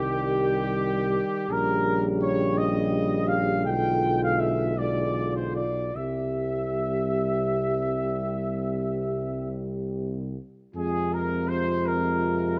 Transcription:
Already playing: tuba C2, trombone D#3, euphonium G3, french horn section G4, trumpet section G4
1.49 tuba A#1, trombone C#3, euphonium G3, french horn section G4, trumpet section A#4
2.21 trumpet section C#5
2.57 trumpet section D#5
3.28 trumpet section F5
3.65 tuba B1, trombone D3, euphonium G#3, french horn section F4, trumpet section G5
4.22 trumpet section F5
4.39 trumpet section E5
4.77 trombone D3, euphonium G#3, french horn section F4, trumpet section D5
5.36 trumpet section C5
5.54 trumpet section D5
5.95 tuba C2, trombone C3, euphonium G3, french horn section G4, trumpet section E5
10.74 tuba F2, trombone C3, euphonium G#3, french horn section F4, trumpet section G#4
11.13 trumpet section A#4
11.48 trumpet section C5
11.86 trumpet section A#4

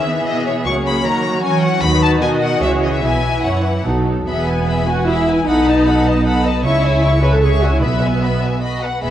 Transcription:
Already playing: cello section D#3, viola section E3, violin section G#4 E5
0.08 viola section B3
0.26 cello section B2, violin section D#5
0.46 violin section C#5
0.65 double bass section C#2, cello section C#3, viola section F#3 A#3, violin section C#5 C#6
0.87 violin section B5
1.05 cello section D#3, viola section F#3, violin section A#4 A#5
1.25 violin section F#4
1.43 cello section E3, viola section C#4, violin section C#5 G#5
1.62 violin section F#5
1.82 double bass section D#2, cello section D#3, viola section F#3 D#4, violin section F#4 B4 B5
2.03 violin section A5
2.21 cello section B2, viola section D#3 F#4, violin section D#5 G#5
2.42 violin section F#5
2.60 double bass section C#2, cello section C#3, viola section E3, violin section G#4 C#5 E5
2.82 violin section D#5
2.94 violin section E5
3.02 double bass section B1, cello section B2, viola section E3 E4, violin section B4 E5 G#5
3.43 cello section F#2, violin section C#5 F#5
3.63 violin section B4
3.85 double bass section B1, cello section B2, viola section F#3 D#4, violin section A4
4.26 double bass section E1, cello section E2, viola section B3, violin section G#4 E5 B5
4.46 violin section B4 G#5
4.66 violin section G#4 E5 B5
4.86 viola section F#4, violin section B4 G#5
5.07 viola section E4, violin section G#4 E5 B5
5.27 violin section B4 G#5
5.46 double bass section B1, cello section B2, viola section D#4, violin section A4 F#5 B5
5.66 violin section B4 D#5 A5
5.85 violin section A4 F#5 B5
6.06 violin section B4 D#5 A5
6.24 violin section A4 F#5 B5
6.44 violin section B4 D#5 A5
6.63 double bass section C#2, cello section C#3, viola section E4, violin section C#5 E5 C#6
6.83 violin section C#5 E5 G#5
7.03 violin section C#5 E5 C#6
7.22 viola section B4, violin section C#5 E5 G#5
7.33 viola section A4
7.42 viola section G#4, violin section C#5 E5 C#6
7.62 viola section F#4, violin section C#5 E5 G#5
7.73 viola section E4
7.81 double bass section B1, cello section B2, viola section B3, violin section B4 E5 B5
8.02 violin section B4 E5 G#5
8.22 violin section B4 E5 B5
8.41 violin section B4 E5 G#5
8.62 violin section F#4 D#5 B5
8.81 violin section B4 F#5
9.02 double bass section E1, cello section E2, viola section B3, violin section G#4 E5 B5

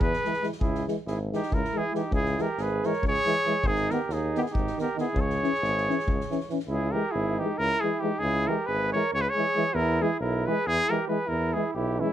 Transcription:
0.00 tuba E2, flugelhorn G#4, trumpet B4, kick
0.13 snare
0.24 euphonium E3 G#3, snare
0.33 snare
0.41 euphonium E3 G#3, snare
0.52 snare
0.60 tuba C#2, flugelhorn E4, trumpet G#4, kick
0.74 snare
0.87 euphonium E3 G#3, snare
1.06 tuba G#1, flugelhorn E4, trumpet G#4, snare
1.32 euphonium E3 G#3, flugelhorn D#4, trumpet G4, snare
1.42 snare
1.51 tuba C#2, flugelhorn E4, trumpet A#4, kick
1.64 snare
1.74 euphonium E3 G#3, flugelhorn E4, trumpet G#4
1.93 euphonium E3 G#3, trumpet G4, snare
1.98 flugelhorn D#4
2.11 tuba C#2, flugelhorn E4, trumpet G#4, kick
2.25 snare
2.38 euphonium E3 G#3, flugelhorn G4, trumpet A#4, snare
2.57 tuba G#1, flugelhorn G#4, snare
2.62 trumpet B4
2.83 euphonium E3 G#3, flugelhorn A#4, trumpet C#5, snare
2.93 snare
3.02 tuba C#2, kick
3.08 flugelhorn G#4, trumpet C#5
3.14 snare
3.26 euphonium E3 G#3, snare
3.44 euphonium E3 G#3, snare
3.63 tuba G#1, kick
3.67 flugelhorn D#4, trumpet G#4
3.75 snare
3.90 euphonium D#3 B3, trumpet A#4, snare
3.94 flugelhorn G4
4.08 tuba D#2, snare
4.13 flugelhorn D#4, trumpet G#4
4.35 euphonium D#3 B3, trumpet G4, snare
4.40 flugelhorn E4, trumpet G#4
4.46 snare
4.51 tuba G#1, flugelhorn D#4, trumpet G4, kick
4.67 snare
4.78 euphonium D#3 B3, flugelhorn G4, trumpet A#4, snare
4.96 euphonium D#3 B3, flugelhorn E4, snare
5.00 trumpet G#4
5.14 tuba C#2, kick
5.18 flugelhorn G#4, trumpet C#5
5.30 snare
5.41 euphonium E3 C#4, snare
5.54 snare
5.62 tuba G#1, snare
5.77 snare
5.88 euphonium E3 C#4, snare
5.99 snare
6.07 tuba C#2, kick
6.20 snare
6.31 euphonium E3 C#4, snare
6.40 snare
6.49 euphonium E3 C#4, snare
6.59 snare
6.67 tuba C#2, flugelhorn E4, trumpet G#4
6.92 euphonium E3 G#3, flugelhorn G4, trumpet A#4
7.11 tuba G#1, flugelhorn E4, trumpet G#4
7.38 euphonium E3, flugelhorn D#4, trumpet G4
7.43 euphonium G#3
7.58 tuba C#2, flugelhorn E4, trumpet A#4
7.81 euphonium E3 G#3, flugelhorn E4, trumpet G#4
8.00 euphonium E3 G#3, flugelhorn D#4, trumpet G4
8.19 tuba C#2, trumpet G#4
8.23 flugelhorn E4
8.47 euphonium E3 G#3, flugelhorn G4, trumpet A#4
8.66 tuba G#1, flugelhorn G#4, trumpet B4
8.93 euphonium E3 G#3, flugelhorn A#4, trumpet C#5
9.13 tuba C#2, flugelhorn G#4, trumpet C#5
9.21 flugelhorn G#4, trumpet B4
9.30 flugelhorn G#4, trumpet C#5
9.36 euphonium E3 G#3
9.55 euphonium E3 G#3
9.74 tuba E2, flugelhorn E4, trumpet A#4
10.01 euphonium E3 G#3, flugelhorn E4, trumpet G#4
10.20 tuba B1, flugelhorn E4, trumpet A#4
10.46 euphonium E3 G#3, flugelhorn G#4, trumpet B4
10.67 tuba E2, flugelhorn E4, trumpet G#4
10.90 euphonium E3 G#3, flugelhorn G4, trumpet A#4
11.08 euphonium E3 G#3, flugelhorn G#4, trumpet B4
11.26 tuba E2, flugelhorn E4, trumpet A#4
11.53 euphonium E3 G#3, flugelhorn E4, trumpet G#4
11.74 tuba B1, flugelhorn E4, trumpet G4
11.99 euphonium E3 G#3, flugelhorn C#4, trumpet E4

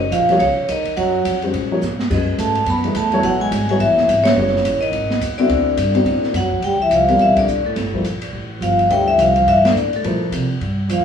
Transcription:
Already playing: upright bass F#1, trombone D#3, vibraphone D#5
0.11 upright bass A#1, trombone F3, vibraphone F5, hi-hat pedal, ride
0.29 upright piano F3 A#3 D#4 G#4 C#5, snare, ride
0.39 upright bass C#2, trombone C#3, vibraphone C#5, ride
0.57 muted upright bass stroke
0.68 upright bass D#2, trombone D#3, vibraphone D#5, hi-hat pedal, ride
0.85 muted upright bass stroke, ride
0.97 upright bass F#2, trombone F#3, vibraphone F#5, ride
1.25 upright bass F2, hi-hat pedal, ride
1.42 upright piano D#3 G#3 C#4 F#4 C5, ride
1.54 upright bass A#2, ride
1.71 upright piano F3 A#3 D#4 G#4 C#5
1.82 upright bass G#2, snare, hi-hat pedal
1.99 snare
2.10 upright bass F#2, upright piano G#3 C#4 F#4 B4 D#5, kick, crash
2.37 upright bass G#2, trombone A3, vibraphone A5, hi-hat pedal, ride
2.55 ride
2.66 upright bass F#2, trombone B3, vibraphone B5, ride
2.84 upright piano E3 A3 D#4 G#4 B4, ride
2.93 upright bass E2, trombone A3, vibraphone A5, hi-hat pedal, ride
3.12 upright piano F#3 B3 E4 A4 C#5, ride
3.22 upright bass A1, trombone F#3, vibraphone F#5, ride
3.39 trombone G#3, vibraphone G#5
3.52 upright bass G#1, hi-hat pedal, ride
3.68 upright piano F#3 B3 E4 A4 C#5, trombone G#3, vibraphone G#5, ride
3.78 upright bass A1, trombone E3, vibraphone E5, ride
3.97 muted upright bass stroke, snare
4.08 upright bass G#1, hi-hat pedal, ride
4.23 trombone C#3, vibraphone C#5, snare, ride
4.36 upright bass F#1, upright piano F#3 B3 E4 A4 C#5
4.47 snare
4.56 snare
4.64 upright bass A1, hi-hat pedal, ride
4.80 trombone D#3, vibraphone D#5, ride
4.92 upright bass G#1, ride
5.10 snare
5.21 upright bass D#2, hi-hat pedal, ride
5.37 trombone D3, upright piano C4 E4 F#4 A4 E5, vibraphone D5, ride
5.49 upright bass D2, ride
5.77 upright bass G2, hi-hat pedal, ride
5.95 upright piano C4 D#4 F#4 A4 D5, ride
6.05 upright bass A2, ride
6.23 snare
6.33 upright bass F#2, trombone F#3, vibraphone F#5, snare, hi-hat pedal, ride
6.51 kick
6.62 upright bass D2, trombone G3, vibraphone G5, ride
6.79 trombone E3, vibraphone E5, muted upright bass stroke
6.90 upright bass C2, trombone F3, vibraphone F5, hi-hat pedal, ride
7.08 trombone F3, upright piano G3 C4 F4 A#4 D5, vibraphone F5, ride
7.19 upright bass A#1, trombone E3, vibraphone E5, ride
7.36 trombone D3, vibraphone D5, kick, ride
7.47 upright bass A1, hi-hat pedal
7.64 trombone A2, vibraphone A4, muted upright bass stroke
7.76 upright bass G1, snare, ride
7.93 upright piano F3 A#3 E4 A4 C5, kick
8.04 upright bass A#1, hi-hat pedal, ride
8.22 ride
8.33 upright bass A1
8.61 upright bass G1, trombone F3, vibraphone F5, hi-hat pedal, ride
8.79 ride
8.89 upright bass D2, trombone G3, upright piano A3 D4 G4 C5 E5, vibraphone G5, ride
9.08 trombone E3, vibraphone E5
9.18 upright bass C2, trombone F3, vibraphone F5, hi-hat pedal, ride
9.36 trombone F3, vibraphone F5, ride
9.47 upright bass G2, trombone E3, vibraphone E5, ride
9.65 trombone D3, vibraphone D5, snare, ride
9.75 upright bass A2, hi-hat pedal
9.93 trombone A2, vibraphone A4, ride
10.03 upright bass A#2, upright piano F3 A#3 E4 A4 C5, ride
10.31 upright bass C3, hi-hat pedal, ride
10.61 upright bass G2, ride
10.89 upright bass E2, trombone F3, hi-hat pedal, ride
10.93 vibraphone F5
10.98 upright bass D2

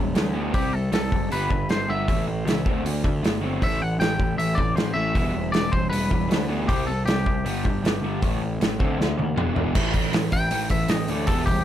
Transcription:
Already playing: picked electric bass E1, overdriven electric guitar E3 G3
0.15 picked electric bass D2, overdriven electric guitar E3 G3, snare, open hi-hat
0.34 overdriven electric guitar E3 G3 B3
0.53 picked electric bass C2, overdriven electric guitar C3 G3 C4, clean electric guitar G4, kick, open hi-hat
0.73 overdriven electric guitar C3 G3, clean electric guitar A4
0.92 picked electric bass C2, overdriven electric guitar C3 G3, clean electric guitar A4, snare, open hi-hat
1.12 picked electric bass F#1, overdriven electric guitar C3 G3, kick
1.31 picked electric bass G1, overdriven electric guitar G2 D3 G3, clean electric guitar B4, open hi-hat
1.50 picked electric bass G1, overdriven electric guitar G2 D3, kick
1.69 picked electric bass G1, overdriven electric guitar G2 D3, clean electric guitar C5, snare, open hi-hat
1.88 picked electric bass G1, overdriven electric guitar G2 D3 G3, clean electric guitar E5
2.08 picked electric bass A1, overdriven electric guitar A2 E3 A3, kick, open hi-hat
2.27 overdriven electric guitar A2 E3
2.47 picked electric bass C#2, overdriven electric guitar A2 E3, snare, open hi-hat
2.65 picked electric bass D2, overdriven electric guitar D3 A3 C4, kick
2.85 picked electric bass D2, overdriven electric guitar D3 A3, open hi-hat
3.04 picked electric bass D2, overdriven electric guitar D3 A3, kick
3.23 picked electric bass G1, overdriven electric guitar D3 A3, snare, open hi-hat
3.42 overdriven electric guitar D3 A3 C4
3.61 picked electric bass A1, overdriven electric guitar A2 E3 A3, clean electric guitar E5, kick, open hi-hat
3.81 overdriven electric guitar A2 E3, clean electric guitar F#5
3.99 picked electric bass A1, overdriven electric guitar A2 E3, clean electric guitar G5, snare, open hi-hat
4.19 picked electric bass A1, overdriven electric guitar A2 E3, kick
4.38 picked electric bass A1, overdriven electric guitar A2 E3, clean electric guitar E5, open hi-hat
4.55 picked electric bass A1, overdriven electric guitar A2 E3, clean electric guitar D5, kick
4.76 picked electric bass A1, overdriven electric guitar A2 E3, clean electric guitar C5, snare, open hi-hat
4.94 picked electric bass A1, overdriven electric guitar A2 E3 A3, clean electric guitar E5
5.14 picked electric bass E1, overdriven electric guitar E3 G3 B3, kick, open hi-hat
5.33 overdriven electric guitar E3 G3
5.52 picked electric bass E1, overdriven electric guitar E3 G3, clean electric guitar D5, snare, open hi-hat
5.72 overdriven electric guitar E3 G3, clean electric guitar C5, kick
5.90 picked electric bass E1, overdriven electric guitar E3 G3, clean electric guitar B4, open hi-hat
6.10 picked electric bass E1, overdriven electric guitar E3 G3, kick
6.29 picked electric bass D2, overdriven electric guitar E3 G3, snare, open hi-hat
6.48 overdriven electric guitar E3 G3 B3
6.68 picked electric bass C2, overdriven electric guitar C3 G3 C4, clean electric guitar G4, kick, open hi-hat
6.87 overdriven electric guitar C3 G3, clean electric guitar A4
7.05 picked electric bass C2, overdriven electric guitar C3 G3, clean electric guitar G4, snare, open hi-hat
7.26 picked electric bass C2, overdriven electric guitar C3 G3, kick
7.45 picked electric bass G1, overdriven electric guitar G2 D3 G3, open hi-hat
7.65 picked electric bass G1, overdriven electric guitar G2 D3, kick
7.84 picked electric bass G1, overdriven electric guitar G2 D3, snare, open hi-hat
8.03 picked electric bass G1, overdriven electric guitar G2 D3 G3
8.22 picked electric bass A1, overdriven electric guitar A2 E3 A3, kick, open hi-hat
8.42 overdriven electric guitar A2 E3
8.60 picked electric bass A1, overdriven electric guitar A2 E3, snare, open hi-hat
8.79 picked electric bass D2, overdriven electric guitar D3 A3 C4, kick
8.99 picked electric bass D2, overdriven electric guitar D3 A3, snare
9.18 picked electric bass D#2, overdriven electric guitar D3 A3, high tom
9.36 picked electric bass E1, overdriven electric guitar E3 B3 D4, mid tom
9.55 overdriven electric guitar E3 B3 D4, floor tom
9.74 picked electric bass A1, overdriven electric guitar A2 E3 A3, kick, crash
9.94 overdriven electric guitar A2 E3, kick, open hi-hat
10.13 picked electric bass A1, overdriven electric guitar A2 E3, snare, open hi-hat
10.32 picked electric bass A1, overdriven electric guitar A2 E3, clean electric guitar G5, kick, open hi-hat
10.51 picked electric bass A1, overdriven electric guitar A2 E3, open hi-hat
10.69 picked electric bass A1, overdriven electric guitar A2 E3, clean electric guitar E5, kick, open hi-hat
10.88 picked electric bass A1, overdriven electric guitar A2 E3, clean electric guitar D#5, snare, open hi-hat
11.08 picked electric bass D2, overdriven electric guitar A2 E3 A3, clean electric guitar D5, open hi-hat
11.27 picked electric bass E1, overdriven electric guitar E3 G3 B3, clean electric guitar A4, kick, open hi-hat
11.46 overdriven electric guitar E3 G3, clean electric guitar G4, kick, open hi-hat

